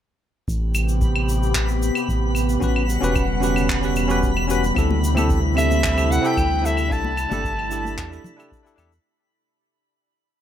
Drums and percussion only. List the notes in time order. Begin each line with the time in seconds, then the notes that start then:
0.48 kick, shaker
0.75 claves, shaker
0.89 shaker
1.01 kick, shaker
1.16 claves
1.29 shaker
1.43 shaker
1.55 kick, clap, claves, shaker
1.68 shaker
1.82 shaker
1.95 claves, shaker
2.08 kick, shaker
2.35 claves, shaker
2.49 shaker
2.62 kick, shaker
2.76 claves
2.89 shaker
3.03 shaker
3.16 kick, claves, shaker
3.43 shaker
3.56 claves, shaker
3.69 kick, clap, shaker
3.83 shaker
3.96 claves, shaker
4.10 shaker
4.23 kick, shaker
4.37 claves
4.50 shaker
4.64 shaker
4.76 kick, claves, shaker
4.91 high conga
5.04 shaker
5.17 high conga, claves, shaker
5.30 kick, shaker
5.57 claves, shaker
5.71 high conga, shaker
5.84 kick, clap, shaker
5.98 claves, shaker
6.12 shaker
6.25 shaker
6.37 kick, claves, shaker
6.66 shaker
6.77 claves, shaker
6.91 kick, shaker
7.04 high conga
7.17 claves, shaker
7.31 high conga, shaker
7.45 kick, shaker
7.59 claves
7.71 shaker
7.85 high conga, shaker
7.98 kick, clap, claves, shaker
8.13 shaker
8.24 low conga, shaker
8.40 claves, shaker
8.52 kick, shaker
8.66 shaker
8.78 claves, shaker
8.92 shaker